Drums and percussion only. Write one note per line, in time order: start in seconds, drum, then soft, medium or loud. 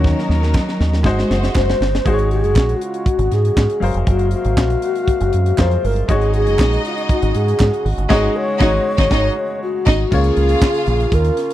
0.04 kick medium
0.04 snare medium
0.19 snare medium
0.31 snare medium
0.43 snare medium
0.54 kick loud
0.54 snare medium
0.54 clap medium
0.69 snare medium
0.81 snare medium
0.93 snare medium
1.04 kick loud
1.04 snare medium
1.19 snare medium
1.31 snare medium
1.44 snare medium
1.55 kick loud
1.55 snare medium
1.55 clap medium
1.70 snare medium
1.82 snare loud
1.95 snare medium
2.06 kick loud
2.06 closed hi-hat medium
2.19 closed hi-hat medium
2.31 closed hi-hat medium
2.44 closed hi-hat soft
2.56 kick loud
2.56 snare loud
2.56 clap medium
2.58 clap medium
2.69 closed hi-hat soft
2.81 closed hi-hat medium
2.94 closed hi-hat soft
3.06 kick medium
3.06 closed hi-hat medium
3.19 closed hi-hat medium
3.32 snare soft
3.32 closed hi-hat medium
3.45 closed hi-hat medium
3.57 kick loud
3.57 snare loud
3.57 clap medium
3.70 closed hi-hat soft
3.82 open hi-hat medium
3.94 closed hi-hat medium
4.07 kick medium
4.07 closed hi-hat medium
4.19 closed hi-hat soft
4.31 closed hi-hat medium
4.45 closed hi-hat medium
4.57 kick loud
4.57 snare loud
4.57 clap medium
4.70 closed hi-hat soft
4.82 closed hi-hat medium
4.95 closed hi-hat soft
5.08 kick medium
5.08 closed hi-hat medium
5.21 closed hi-hat soft
5.33 closed hi-hat medium
5.46 closed hi-hat medium
5.58 kick loud
5.58 snare loud
5.58 clap medium
5.71 closed hi-hat soft
5.85 open hi-hat medium
5.96 closed hi-hat medium
6.09 kick loud
6.09 closed hi-hat medium
6.21 closed hi-hat soft
6.34 closed hi-hat medium
6.47 closed hi-hat medium
6.59 kick loud
6.59 snare loud
6.59 clap medium
6.61 clap medium
6.73 closed hi-hat medium
6.85 closed hi-hat medium
6.98 closed hi-hat soft
7.09 kick loud
7.09 closed hi-hat medium
7.22 closed hi-hat medium
7.35 closed hi-hat medium
7.48 closed hi-hat medium
7.59 kick loud
7.59 snare loud
7.59 clap medium
7.61 clap medium
7.74 closed hi-hat soft
7.86 open hi-hat medium
7.98 closed hi-hat medium
8.10 kick loud
8.10 snare loud
8.10 crash medium
8.61 kick loud
8.61 snare loud
8.98 kick loud
8.98 snare loud
9.11 kick loud
9.11 snare loud
9.87 kick loud
9.87 snare loud
9.87 crash medium
10.12 kick medium
10.12 crash loud
10.24 closed hi-hat soft
10.37 closed hi-hat medium
10.49 closed hi-hat medium
10.62 kick loud
10.62 snare loud
10.62 clap loud
10.62 clap medium
10.74 closed hi-hat medium
10.86 closed hi-hat medium
11.00 closed hi-hat soft
11.12 kick loud
11.12 closed hi-hat medium
11.25 closed hi-hat medium
11.37 snare soft
11.37 closed hi-hat medium
11.50 closed hi-hat medium